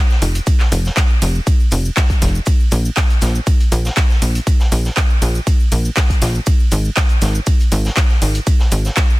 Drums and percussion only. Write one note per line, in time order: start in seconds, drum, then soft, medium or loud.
0.10 snare medium
0.10 shaker soft
0.22 open hi-hat loud
0.22 shaker medium
0.35 closed hi-hat soft
0.35 shaker soft
0.47 kick loud
0.47 ride medium
0.47 shaker loud
0.47 shaker soft
0.60 snare medium
0.60 clap soft
0.60 shaker soft
0.72 open hi-hat loud
0.72 shaker medium
0.85 snare soft
0.85 shaker soft
0.96 kick loud
0.96 snare loud
0.96 clap loud
0.96 ride medium
0.96 shaker medium
0.96 shaker soft
1.10 shaker soft
1.22 open hi-hat loud
1.22 shaker medium
1.35 shaker soft
1.47 kick loud
1.47 ride medium
1.47 shaker medium
1.47 shaker soft
1.60 shaker soft
1.71 open hi-hat loud
1.71 shaker medium
1.85 shaker soft
1.97 kick loud
1.97 snare loud
1.97 clap loud
1.97 ride medium
1.97 shaker medium
1.97 shaker soft
2.10 kick medium
2.10 closed hi-hat soft
2.10 shaker soft
2.22 snare soft
2.22 open hi-hat loud
2.22 shaker medium
2.35 shaker soft
2.46 kick loud
2.46 ride medium
2.46 shaker medium
2.46 shaker soft
2.60 shaker soft
2.71 open hi-hat loud
2.71 shaker medium
2.85 shaker soft
2.97 kick loud
2.97 snare loud
2.97 clap loud
2.97 ride medium
2.97 shaker soft
2.97 shaker medium
3.10 closed hi-hat soft
3.10 shaker soft
3.21 snare medium
3.21 open hi-hat loud
3.21 shaker medium
3.35 shaker soft
3.47 kick loud
3.47 ride medium
3.47 shaker medium
3.47 shaker soft
3.60 closed hi-hat soft
3.60 shaker soft
3.72 open hi-hat loud
3.72 shaker medium
3.85 snare medium
3.85 shaker soft
3.96 kick loud
3.96 snare loud
3.96 clap loud
3.96 ride medium
3.96 shaker loud
3.96 shaker soft
4.10 snare medium
4.10 shaker soft
4.22 open hi-hat loud
4.22 shaker medium
4.35 closed hi-hat soft
4.35 shaker soft
4.47 kick loud
4.47 ride medium
4.47 shaker soft
4.47 shaker medium
4.60 snare medium
4.60 shaker soft
4.72 open hi-hat loud
4.72 shaker medium
4.85 snare soft
4.85 shaker soft
4.96 kick loud
4.96 snare loud
4.96 clap loud
4.96 ride medium
4.96 shaker medium
4.96 shaker soft
5.10 shaker soft
5.22 open hi-hat loud
5.22 shaker medium
5.35 shaker soft
5.47 kick loud
5.47 ride medium
5.47 shaker soft
5.47 shaker medium
5.60 shaker soft
5.72 open hi-hat loud
5.72 shaker medium
5.85 shaker soft
5.96 kick loud
5.96 snare loud
5.96 clap loud
5.96 ride medium
5.96 shaker medium
5.96 shaker soft
6.10 kick medium
6.10 closed hi-hat soft
6.10 shaker soft
6.21 snare soft
6.21 open hi-hat loud
6.21 shaker medium
6.35 shaker soft
6.46 kick loud
6.46 ride medium
6.46 shaker loud
6.46 shaker soft
6.60 shaker soft
6.71 open hi-hat loud
6.71 shaker medium
6.85 shaker soft
6.96 kick loud
6.96 snare loud
6.96 clap loud
6.96 ride medium
6.96 shaker medium
6.96 shaker soft
7.09 closed hi-hat soft
7.09 shaker soft
7.21 snare medium
7.21 open hi-hat loud
7.21 shaker medium
7.35 shaker soft
7.46 kick loud
7.46 ride medium
7.46 shaker medium
7.46 shaker soft
7.60 closed hi-hat soft
7.60 shaker soft
7.72 open hi-hat loud
7.72 shaker medium
7.85 snare medium
7.85 shaker soft
7.96 kick loud
7.96 snare loud
7.96 clap loud
7.96 ride medium
7.96 shaker soft
7.96 shaker loud
8.10 snare soft
8.10 shaker soft
8.22 open hi-hat loud
8.22 shaker medium
8.35 closed hi-hat soft
8.35 shaker soft
8.47 kick loud
8.47 ride medium
8.47 shaker soft
8.47 shaker medium
8.60 snare medium
8.60 shaker soft
8.71 open hi-hat loud
8.71 shaker medium
8.85 snare soft
8.85 shaker soft
8.96 kick loud
8.96 snare loud
8.96 clap loud
8.96 ride medium
8.96 shaker medium
8.96 shaker soft
9.10 shaker soft